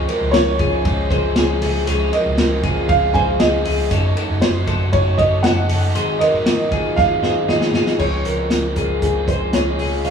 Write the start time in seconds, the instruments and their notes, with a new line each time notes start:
0.08 overdriven electric guitar F3 G#3 C4, clean electric guitar F#4 A#4, ride
0.21 picked electric bass C#2
0.31 picked electric bass C#2, overdriven electric guitar C#3 F3 G#3, upright piano C#5, snare, ride
0.59 picked electric bass C#2, clean electric guitar F4 G#4, kick, ride
0.84 picked electric bass C#2, overdriven electric guitar C#3 F3 G#3 C4, kick, ride
1.09 picked electric bass C#2, overdriven electric guitar F3 G#3 C4, clean electric guitar G#4 C5, kick, ride
1.35 picked electric bass C#2, overdriven electric guitar C#3 F3 G#3 C4, clean electric guitar F4 G#4, snare, ride
1.61 picked electric bass C#2, overdriven electric guitar F3 G#3 C4, clean electric guitar F4 G#4, open hi-hat, ride
1.86 picked electric bass C#2, overdriven electric guitar C#3 F3 G#3 C4, clean electric guitar G#4 C#5, hi-hat pedal, ride
2.11 overdriven electric guitar F3 G#3 C4, clean electric guitar F#4 A#4, upright piano D#5, ride
2.26 picked electric bass C#2
2.37 picked electric bass C#2, overdriven electric guitar C#3 F3 G#3 C4, snare, ride
2.63 picked electric bass C#2, clean electric guitar F4 G#4, kick, ride
2.88 picked electric bass C#2, overdriven electric guitar C#3 F3 G#3 C4, upright piano F5, kick, ride
3.14 picked electric bass C#2, overdriven electric guitar F3 G#3 C4, clean electric guitar G#4 C5, upright piano G#5, kick, ride
3.39 picked electric bass C#2, overdriven electric guitar C#3 F3 G#3 C4, clean electric guitar F4 G#4, upright piano D#5, snare, ride
3.65 picked electric bass C#2, overdriven electric guitar F3 G#3 C4, clean electric guitar F4 G#4, open hi-hat, ride
3.91 picked electric bass F#1, overdriven electric guitar F#2 C#3 F#3 A3 D#4, clean electric guitar A4 C#5, kick, hi-hat pedal, ride
4.16 overdriven electric guitar F#3 A3 D#4, clean electric guitar F#4 A4, ride
4.30 picked electric bass F#1
4.41 picked electric bass F#1, overdriven electric guitar F#2 C#3 F#3 A3 D#4, upright piano C5, snare, ride
4.67 picked electric bass F#1, clean electric guitar F#4 A4, kick, ride
4.93 picked electric bass F#1, overdriven electric guitar C#3 F#3 A3 D#4, upright piano C#5, kick, ride
5.18 picked electric bass F#1, overdriven electric guitar A3 D#4, clean electric guitar A4 C#5, upright piano D#5, kick, ride
5.22 overdriven electric guitar F#3
5.43 picked electric bass F#1, overdriven electric guitar F#2 C#3 F#3 A3 D#4, clean electric guitar F#4 A4, upright piano F#5, snare, ride
5.69 picked electric bass F#1, overdriven electric guitar F#3 A3 D#4, clean electric guitar F#4 A4, open hi-hat, ride
5.95 picked electric bass G#1, overdriven electric guitar G#2 D#3 F#3 C4 D#4, clean electric guitar G#4 C5, hi-hat pedal, ride
6.19 overdriven electric guitar C4 D#4, clean electric guitar F#4 A#4, upright piano D#5, ride
6.24 overdriven electric guitar F#3
6.34 picked electric bass G#1
6.46 picked electric bass G#1, overdriven electric guitar G#2 D#3 F#3 C4 D#4, snare, ride
6.72 picked electric bass G#1, clean electric guitar F4 G#4, kick, ride
6.96 picked electric bass G#1, overdriven electric guitar D#3 F#3 C4 D#4, upright piano F5, kick, snare
7.22 picked electric bass G#1, overdriven electric guitar F#3 C4 D#4, clean electric guitar G#4 C5, snare
7.48 picked electric bass G#1, overdriven electric guitar G#2 D#3 F#3 C4 D#4, clean electric guitar D#4 G#4, upright piano D#5, snare
7.61 snare
7.74 picked electric bass G#1, overdriven electric guitar F#3 C4 D#4, clean electric guitar F4 G#4, snare
7.87 snare
7.99 picked electric bass C#2, overdriven electric guitar C#3 F3 G#3 C4, clean electric guitar G#4 C#5, upright piano C#5, kick, crash
8.25 picked electric bass C#2, overdriven electric guitar F3 G#3 C4, clean electric guitar F#4 A#4, closed hi-hat
8.50 picked electric bass C#2, overdriven electric guitar C#3 F3 G#3 C4, snare, closed hi-hat
8.76 picked electric bass C#2, overdriven electric guitar F3 G#3 C4, clean electric guitar F4 G#4, upright piano A#4, kick, closed hi-hat
9.02 picked electric bass C#2, overdriven electric guitar C#3 F3 G#3 C4, upright piano G#4, kick, closed hi-hat
9.28 picked electric bass C#2, clean electric guitar G#4 C5, upright piano C5, kick, closed hi-hat
9.53 picked electric bass C#2, overdriven electric guitar C#3 F3 G#3 C4, clean electric guitar F4 G#4, upright piano C#5, snare, closed hi-hat
9.78 picked electric bass C#2, overdriven electric guitar F3 G#3 C4, clean electric guitar F4 G#4, open hi-hat
10.05 picked electric bass C#2, overdriven electric guitar C#3 F3 G#3 C4, clean electric guitar G#4 C#5, upright piano F5, closed hi-hat